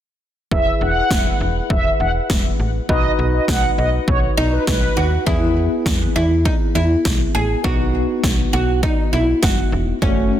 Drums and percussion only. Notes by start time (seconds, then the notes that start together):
0.51 kick
1.11 kick, snare
1.70 kick
2.30 kick, snare
2.89 kick
3.48 kick, snare
4.08 kick
4.67 kick, snare
5.27 kick
5.86 kick, snare
6.45 kick
7.05 kick, snare
7.64 kick
8.24 kick, snare
8.83 kick
9.43 kick, snare
10.02 kick